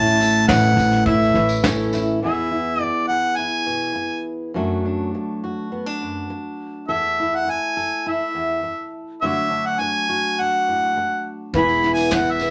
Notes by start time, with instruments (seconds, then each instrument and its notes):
Already playing: upright bass A1, steel-string acoustic guitar A2 A3 C#4 E4, harmonica A5
0.07 tambourine
0.20 steel-string acoustic guitar A4, snare, tambourine
0.36 tambourine
0.48 upright bass A1, steel-string acoustic guitar E3 C#4 E4 A4, harmonica F#5, kick, snare, tambourine
0.64 tambourine
0.77 upright bass A1, snare, tambourine
0.92 snare
1.06 steel-string acoustic guitar C#4 E4 A4, harmonica E5, kick, snare, tambourine
1.22 tambourine
1.34 upright bass A1, steel-string acoustic guitar E3 C#4, snare, tambourine
1.49 tambourine
1.63 steel-string acoustic guitar C#4 E4 A4, kick, snare, tambourine
1.78 tambourine
1.93 steel-string acoustic guitar E4, snare, tambourine
2.07 tambourine
2.22 steel-string acoustic guitar E2 E3 B3 E4 G#4, harmonica E5
2.51 steel-string acoustic guitar E4
2.80 harmonica D5, muted steel-string acoustic guitar stroke
3.08 steel-string acoustic guitar G#4, harmonica F#5
3.36 steel-string acoustic guitar E4, harmonica G#5
3.66 steel-string acoustic guitar B2
3.95 muted steel-string acoustic guitar stroke
4.54 steel-string acoustic guitar F#2 F#3 A3 D4 F#4
4.85 steel-string acoustic guitar D4
5.15 muted steel-string acoustic guitar stroke
5.44 steel-string acoustic guitar F#4
5.72 steel-string acoustic guitar B3
5.86 steel-string acoustic guitar D4
6.01 steel-string acoustic guitar F#2
6.30 muted steel-string acoustic guitar stroke
6.88 steel-string acoustic guitar E2 A4, harmonica E5
7.20 steel-string acoustic guitar E4
7.35 harmonica F#5
7.47 harmonica G#5, muted steel-string acoustic guitar stroke
7.77 steel-string acoustic guitar A4
8.06 steel-string acoustic guitar E4, harmonica E5
8.34 steel-string acoustic guitar E2
8.63 muted steel-string acoustic guitar stroke
9.21 steel-string acoustic guitar D3 F#3 A3 D4 F#4, harmonica E5
9.51 steel-string acoustic guitar D4
9.66 harmonica F#5
9.80 harmonica G#5, muted steel-string acoustic guitar stroke
10.09 steel-string acoustic guitar F#4
10.40 steel-string acoustic guitar D4, harmonica F#5
10.68 steel-string acoustic guitar A2
10.97 muted steel-string acoustic guitar stroke
11.53 upright bass E1, steel-string acoustic guitar E2 E3 B3 E4 G#4, harmonica B5, kick, snare, tambourine
11.68 tambourine
11.83 steel-string acoustic guitar E4, snare, tambourine
11.93 harmonica G#5, tambourine
11.97 snare
12.11 steel-string acoustic guitar E3, harmonica F#5, kick, snare, tambourine
12.25 tambourine
12.32 harmonica E5
12.39 steel-string acoustic guitar B3, snare, tambourine